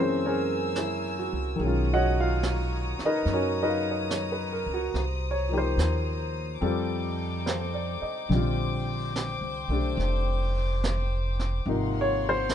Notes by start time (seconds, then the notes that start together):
Already playing: F#2 E3 G#3 A#3 C#4 A#4 G#5 E6
0.00 C4 C5
0.26 C#4 G#4 A#4 C#5
0.75 E4, snare, hi-hat pedal
1.19 F#4
1.33 C2
1.56 B1 D#3 G#3, brush sweep
1.60 C#4 C#5 A#5 D#6
1.67 F4
1.94 F#4 C#5 D#5 F#5
2.20 F4 F5
2.43 snare, hi-hat pedal
2.99 muted upright bass stroke, snare
3.05 D#4 A#4 B4 D#5
3.26 F#2, brush sweep, snare
3.33 C#4 F#4 A#4 C#5
3.62 D#4 A#4 B4 D#5
3.69 F5
3.91 D#5
4.10 C#5, snare, hi-hat pedal
4.32 B4
4.52 A#4
4.66 C#2
4.74 F#4
4.93 C2 C5, brush sweep, snare
5.31 C#5
5.49 F3 A#3 D#4
5.54 G4
5.58 C5
5.77 D#2, snare, hi-hat pedal
6.61 F2 G3 C4 D#4 F4 A4 G5 D6, brush sweep
7.46 C5, snare, hi-hat pedal
7.74 D5
8.02 D#5, muted upright bass stroke
8.29 A#1 D3 G3 C5, brush sweep, snare
8.34 C4 F4
9.16 snare, hi-hat pedal
9.41 C2
9.69 B1 A3 D4
9.74 G4
9.97 F1, brush sweep, snare
10.84 snare, hi-hat pedal
11.39 snare
11.66 G#1 C3 F3 A#3 D#4 A#4 F5 F#5 C6, brush sweep
12.01 C#5
12.29 C5
12.49 snare, hi-hat pedal